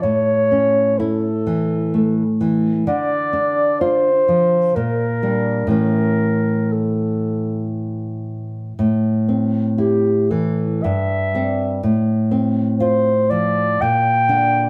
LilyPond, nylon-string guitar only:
\new Staff \with { instrumentName = "Nylon-string guitar" } { \clef bass \time 3/4 \key a \phrygian \tempo 4 = 62 a,8 cis'8 e'8 e8 a8 e8 | d8 d'8 f'8 f8 bes,8 <g d'>8 | <a, e cis'>2. | \key f \major a,8 c'8 e'8 e8 g,8 <g c'>8 |
a,8 c'8 f'8 f8 bes,8 <d d'>8 | }